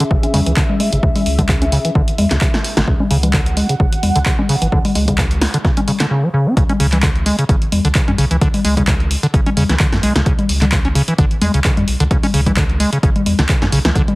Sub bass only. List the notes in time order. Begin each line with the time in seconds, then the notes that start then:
0.11 G#1
0.34 E2
0.46 C#2
0.93 G#1
1.03 C#2
1.26 C#2
1.95 G#1
2.18 E2
2.31 C#2
2.77 G#1
2.88 C#2
3.11 C#2
3.80 G#1
4.03 E2
4.16 C#2
4.62 G#1
4.72 C#2
4.95 C#2
6.57 C#2
6.80 C#2
7.49 G#1
7.72 E2
7.85 C#2
8.08 F#2
8.18 B1
8.31 C#2
8.42 C#2
8.65 C#2
9.34 G#1
9.57 E2
9.70 C#2
9.93 F#2
10.03 B1
10.16 C#2
10.26 C#2
10.49 C#2
11.19 G#1
11.42 E2
11.54 C#2
11.77 F#2
11.88 B1
12.00 C#2
12.11 C#2
12.34 C#2
13.03 G#1
13.26 E2
13.39 C#2
13.62 F#2
13.72 B1
13.85 C#2
13.95 C#2